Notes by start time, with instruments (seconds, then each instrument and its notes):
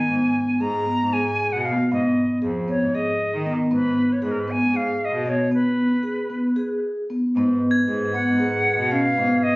Already playing: flute G#5
0.08 cello G#2, vibraphone B3
0.60 cello G#2, vibraphone G#4, flute A#5
0.86 vibraphone B3
1.01 cello G#2
1.13 vibraphone G#4, flute G#5
1.52 cello B2, flute F#5
1.65 vibraphone B3, flute F5
1.91 cello G#2, vibraphone B3, flute D#5
2.42 cello F2, vibraphone G#4
2.68 vibraphone B3, flute C#5
2.82 cello G#2
2.95 vibraphone G#4, flute D#5
3.34 cello D#3
3.46 vibraphone B3
3.71 cello G#2, vibraphone B3, flute B4
4.12 flute C#5
4.22 cello G#2, vibraphone G#4, flute B4
4.31 flute A#4
4.40 flute B4
4.48 vibraphone B3, flute G#5
4.61 cello G#2
4.73 vibraphone G#4, flute F5
5.05 flute D#5
5.13 cello B2
5.26 vibraphone B3, flute C#5
5.51 vibraphone B3, flute B4
6.03 vibraphone G#4
6.30 vibraphone B3
6.56 vibraphone G#4
7.10 vibraphone B3
7.35 cello G#2, brass ensemble G#3 B3 B4, vibraphone B3
7.71 crotales G#6
7.88 cello G#2, vibraphone G#4
8.13 vibraphone B3, flute F#5
8.26 cello G#2
8.40 vibraphone G#4
8.78 cello B2
8.91 vibraphone C#4, flute F5
9.17 cello G#2, vibraphone B3
9.43 flute D#5